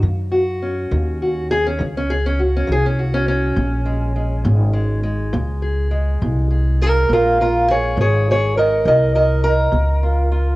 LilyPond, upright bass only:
\new Staff \with { instrumentName = "Upright bass" } { \clef bass \time 12/8 \key bes \minor \tempo 4. = 68 ges,4. ees,4. des,4. c,4. | bes,,4. aes,,4. des,4. c,4. | bes,,4. aes,,4. c,4. des,4. | }